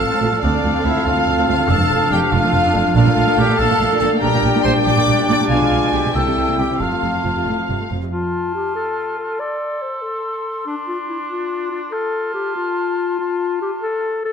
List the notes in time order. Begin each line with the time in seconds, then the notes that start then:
Already playing: C4 A4 F5 A5
0.00 A1 A2
0.10 A2 C4
0.20 A1 A2 A3 C4 F4
0.32 A2 F3
0.41 D2 C4 D4 A4 D5 F5 A5
0.53 D2 A3
0.64 D2 F3
0.73 D2 C4
0.84 D2 A3 C4 E4 F4 E5
0.95 D2 F3
1.05 D2 C4 F4 F5
1.17 D2 A3
1.26 D2 F3
1.37 D2 C4
1.47 D2 A3 C4 F4 F5
1.58 D2 F3
1.68 F1 F2 D4 A4 A5
1.79 F2 A3
1.90 F1 F2 F3
2.01 F2 D4
2.11 F1 F2 A3 D4 G4 G5
2.22 F2 F3
2.32 F1 F2 D4 F4 F5
2.43 F2 A3
2.53 F1 F2 F3
2.62 F2 D4
2.74 F1 F2 A3 D4
2.84 F2 F3
2.95 A#1 A#2 A3 D4 F4 A4 F5 A5
3.06 A#2 A#3
3.16 A#1 A#2 A3
3.27 A#2 D4
3.37 A#1 A#2 A#3 G4 G5
3.48 A#2 A3
3.57 A#1 A#2 D4 A4 A5
3.70 A#2 A#3
3.80 A#1 A#2 A3
3.91 A#2 D4
3.99 A#1 A#2 A#3 A4 A5
4.11 A#2 A3
4.20 A#1 A#2 G3 D4 G4 A#4 D5 G5 A#5
4.33 A#2 A#3
4.43 A#1 A#2 G3
4.54 A#2 D4
4.63 A#1 A#2 A#3 C5 C6
4.76 A#2 G3
4.85 A#1 A#2 D4 D5 D6
4.97 A#2 A#3
5.07 A#1 A#2 G3
5.18 A#2 D4
5.28 A#1 A#2 A#3 D5 D6
5.40 A#2 G3
5.49 B1 B2 G#3 D4 F4 F5 G#5
5.61 B2 B3
5.71 B1 B2 G#3
5.83 B2 D4
5.92 B1 B2 B3 G4 G5
6.05 B2 G#3
6.14 C2 C3 G3 A#3 C4 E4 A4 E5 G5 A5
6.26 C3 G3
6.37 C2 C3 E3
6.48 C3 A#3
6.58 C2 C3 G3 G4 G5
6.70 C3 E3
6.80 F1 F2 A3 F4 F5 A5
6.91 F2 F3
7.02 F1 F2 C3
7.13 F2 A3
7.25 F1 F2 F3
7.36 F2 C3
7.46 F1 A2 A3
7.59 F3
7.69 F1 G2 C3
7.80 A3
7.90 F1 F2 F3
8.02 C3
8.12 F4 A5
8.55 G4
8.75 A4
9.19 A4
9.40 A4 D5 C6
9.82 C5
10.02 A4
10.66 D4
10.88 F4
11.08 E4
11.29 F4
11.71 F4
11.92 F4 A4 A5
12.34 G4
12.56 F4
13.19 F4
13.62 G4
13.83 A4
14.25 A4